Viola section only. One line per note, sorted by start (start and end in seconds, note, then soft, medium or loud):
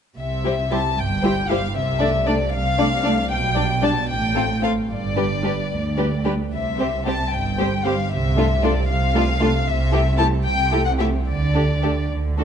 0.44 0.52 G3 soft
0.44 0.52 E4 soft
0.71 0.79 G3 soft
0.71 0.79 E4 soft
1.24 1.32 G3 soft
1.24 1.32 E4 soft
1.50 1.58 G3 soft
1.50 1.58 E4 soft
2.01 2.09 A3 soft
2.01 2.09 D4 soft
2.28 2.36 A3 soft
2.28 2.36 D4 soft
2.80 2.88 A3 soft
2.80 2.88 D4 soft
3.06 3.14 A3 soft
3.06 3.14 D4 soft
3.57 3.65 G3 soft
3.57 3.65 D4 soft
3.83 3.91 G3 soft
3.83 3.91 D4 soft
4.36 4.44 A3 soft
4.36 4.44 C4 soft
4.62 4.70 A3 soft
4.62 4.70 C4 soft
5.17 5.25 G3 soft
5.17 5.25 D4 soft
5.43 5.52 G3 soft
5.43 5.51 D4 soft
5.98 6.06 G3 soft
5.98 6.06 D4 soft
6.26 6.34 G3 soft
6.26 6.34 D4 soft
6.79 6.87 G3 soft
6.79 6.87 C4 soft
7.06 7.14 G3 soft
7.06 7.14 C4 soft
7.59 7.68 G3 soft
7.59 7.67 C4 soft
7.85 7.93 G3 soft
7.85 7.94 C4 soft
8.37 8.45 A3 soft
8.37 8.45 D4 soft
8.63 8.71 A3 soft
8.63 8.71 D4 soft
9.15 9.23 A3 soft
9.15 9.23 D4 soft
9.41 9.49 A3 soft
9.41 9.49 D4 soft
9.93 10.01 A3 soft
9.93 10.01 E4 soft
10.18 10.26 A3 soft
10.18 10.26 E4 soft
10.73 10.81 A3 soft
10.73 10.81 E4 soft
11.00 11.08 A3 soft
11.00 11.08 E4 soft
11.55 11.63 A3 soft
11.55 11.63 D4 soft
11.83 11.91 A3 soft
11.83 11.91 D4 soft
12.38 12.44 A3 soft
12.38 12.44 D4 soft